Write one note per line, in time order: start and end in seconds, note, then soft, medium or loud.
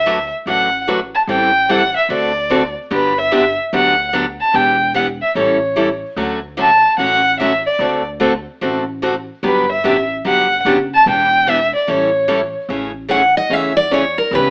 0.00 0.30 D2 medium
0.00 0.30 E5 medium
0.06 0.17 D3 medium
0.06 0.17 F#3 medium
0.06 0.17 A3 medium
0.06 0.17 D4 medium
0.06 0.17 F#4 medium
0.06 0.18 B4 medium
0.46 1.11 A1 medium
0.46 0.68 D3 medium
0.46 0.68 F#3 medium
0.46 0.68 A3 medium
0.46 0.68 D4 medium
0.46 0.68 F#4 medium
0.46 0.69 B4 medium
0.46 0.85 F#5 medium
0.87 0.99 D3 medium
0.87 0.99 F#3 medium
0.87 0.99 A3 medium
0.87 0.99 D4 medium
0.87 0.99 F#4 medium
0.87 0.99 B4 medium
1.15 1.21 A5 medium
1.27 1.93 A1 medium
1.27 1.50 E3 medium
1.27 1.50 G3 medium
1.27 1.50 C4 medium
1.27 1.50 E4 medium
1.27 1.50 A4 medium
1.27 1.72 G5 loud
1.69 1.80 E3 medium
1.69 1.80 G3 medium
1.69 1.81 C4 medium
1.69 1.81 E4 medium
1.69 1.81 A4 medium
1.69 1.95 F#5 medium
1.97 2.10 E5 medium
2.09 2.74 D2 medium
2.09 2.31 D3 medium
2.09 2.31 A3 medium
2.09 2.31 C4 medium
2.09 2.31 F#4 medium
2.09 2.31 A4 medium
2.09 2.73 D5 medium
2.50 2.61 D3 medium
2.50 2.62 A3 medium
2.50 2.62 C4 medium
2.50 2.62 F#4 medium
2.50 2.62 A4 medium
2.90 3.56 G1 medium
2.90 3.12 D3 medium
2.90 3.12 F#3 medium
2.90 3.12 B3 medium
2.90 3.12 D4 medium
2.90 3.13 G4 medium
2.90 3.21 B4 medium
3.19 3.59 E5 medium
3.31 3.43 D3 medium
3.31 3.43 F#3 medium
3.31 3.43 B3 medium
3.31 3.44 D4 medium
3.31 3.43 G4 medium
3.73 4.38 D2 medium
3.73 3.94 D3 medium
3.73 3.94 F#3 medium
3.73 3.94 B3 medium
3.73 3.94 D4 medium
3.73 3.94 G4 medium
3.73 4.12 F#5 medium
4.13 4.25 D3 medium
4.13 4.25 F#3 medium
4.13 4.25 B3 medium
4.13 4.25 D4 medium
4.13 4.25 G4 loud
4.41 4.57 A5 medium
4.53 5.19 E1 medium
4.53 4.75 E3 medium
4.53 4.75 B3 medium
4.53 4.75 D4 medium
4.53 4.76 G4 medium
4.53 4.95 G5 loud
4.94 5.06 E3 medium
4.94 5.06 B3 medium
4.94 5.07 D4 medium
4.94 5.07 G4 medium
4.94 5.07 F#5 medium
5.22 5.36 E5 medium
5.35 6.01 A1 medium
5.35 5.57 E3 medium
5.35 5.57 G3 medium
5.35 5.57 C#4 medium
5.35 5.58 E4 medium
5.35 5.58 A4 medium
5.35 5.99 C#5 medium
5.76 5.88 E3 medium
5.76 5.88 G3 medium
5.76 5.88 C#4 medium
5.76 5.88 E4 medium
5.76 5.88 A4 medium
6.17 6.82 D2 medium
6.17 6.38 D3 medium
6.17 6.39 F#3 medium
6.17 6.39 A3 medium
6.17 6.39 C#4 medium
6.17 6.39 F#4 medium
6.57 6.69 D3 medium
6.57 6.69 F#3 medium
6.57 6.69 A3 medium
6.57 6.70 C#4 medium
6.57 6.70 F#4 medium
6.57 6.98 A5 medium
6.98 7.64 A1 medium
6.98 7.20 D3 medium
6.98 7.20 F#3 medium
6.98 7.20 A3 medium
6.98 7.20 C#4 medium
6.98 7.20 F#4 medium
6.98 7.37 F#5 medium
7.40 7.51 D3 medium
7.40 7.51 F#3 medium
7.40 7.51 A3 medium
7.40 7.51 C#4 medium
7.40 7.52 F#4 medium
7.40 7.63 E5 medium
7.66 8.04 D5 medium
7.79 8.45 D2 medium
7.79 8.01 D3 medium
7.79 8.02 A3 medium
7.79 8.02 C4 medium
7.79 8.02 F#4 medium
7.79 8.02 A4 medium
8.20 8.32 D3 medium
8.20 8.32 A3 medium
8.20 8.32 C4 medium
8.20 8.32 F#4 medium
8.20 8.32 A4 loud
8.61 9.27 A1 medium
8.61 8.83 D3 medium
8.61 8.83 A3 medium
8.61 8.83 C4 medium
8.61 8.83 F#4 medium
8.61 8.83 A4 medium
9.02 9.14 D3 medium
9.02 9.14 A3 medium
9.02 9.14 C4 medium
9.02 9.14 F#4 medium
9.02 9.14 A4 medium
9.43 9.76 G1 medium
9.43 9.64 D3 medium
9.43 9.65 F#3 medium
9.43 9.65 B3 medium
9.43 9.65 D4 medium
9.43 9.65 G4 medium
9.43 9.71 B4 medium
9.70 10.10 E5 medium
9.84 10.19 A1 medium
9.84 9.95 D3 medium
9.84 9.96 F#3 medium
9.84 9.96 B3 medium
9.84 9.96 D4 medium
9.84 9.96 G4 medium
10.25 10.60 G1 medium
10.25 10.46 D3 medium
10.25 10.46 F#3 medium
10.25 10.46 B3 medium
10.25 10.46 D4 medium
10.25 10.47 G4 medium
10.25 10.64 F#5 medium
10.65 11.00 F#1 medium
10.65 10.77 D3 medium
10.65 10.77 F#3 medium
10.65 10.77 B3 medium
10.65 10.77 D4 medium
10.65 10.77 G4 medium
10.94 11.07 A5 medium
11.06 11.71 E1 medium
11.06 11.28 E3 medium
11.06 11.28 B3 medium
11.06 11.28 D4 medium
11.06 11.28 G4 medium
11.06 11.51 G5 loud
11.47 11.58 E3 medium
11.47 11.59 B3 medium
11.47 11.59 D4 medium
11.47 11.59 G4 medium
11.47 11.74 E5 medium
11.75 11.93 D5 medium
11.87 12.53 A1 medium
11.87 12.09 E3 medium
11.87 12.09 G3 medium
11.87 12.09 C#4 medium
11.87 12.09 E4 medium
11.87 12.09 A4 medium
11.87 12.56 C#5 medium
12.28 12.39 E3 medium
12.28 12.39 G3 medium
12.28 12.40 C#4 medium
12.28 12.40 E4 medium
12.28 12.40 A4 medium
12.69 13.34 A1 medium
12.69 12.91 C#3 medium
12.69 12.91 E3 medium
12.69 12.91 A3 medium
12.69 12.91 C#4 medium
12.69 12.91 G#4 medium
13.08 13.20 C#3 medium
13.08 13.21 E3 medium
13.08 13.21 A3 medium
13.08 13.21 C#4 medium
13.08 13.21 G#4 medium
13.08 13.35 F#5 medium
13.37 13.53 D#5 medium
13.50 14.15 E2 medium
13.50 13.72 C#3 medium
13.50 13.71 E3 medium
13.50 13.71 A3 medium
13.50 13.72 C#4 medium
13.50 13.72 G#4 medium
13.50 13.76 E5 medium
13.77 13.91 D5 medium
13.91 14.02 C#3 medium
13.91 14.03 E3 medium
13.91 14.03 A3 medium
13.91 14.03 C#4 medium
13.91 14.03 G#4 medium
13.91 14.17 C#5 medium
14.18 14.32 A#4 medium
14.31 14.50 C#2 medium
14.31 14.50 C#3 medium
14.31 14.50 E3 medium
14.31 14.50 B3 medium
14.31 14.50 C#4 medium
14.31 14.50 G4 medium
14.31 14.50 B4 medium